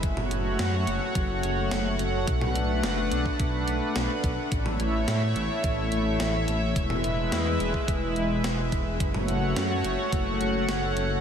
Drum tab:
HH |x-x-x-x-x-x-x-x-|x-x-x-x-x-x-x-x-|x-x-x-x-x-x-x-x-|x-x-x-x-x-x-x-x-|
SD |----o-------o---|----o-------o---|----o-------o---|----o-------o---|
T2 |-o--------------|-o--------------|-o--------------|-o--------------|
BD |o-------o-------|o------oo-----o-|o-------o-------|o------oo-----o-|

HH |x-x-x-x-x-x-x-x-|
SD |----o-------o---|
T2 |-o--------------|
BD |o-------o-------|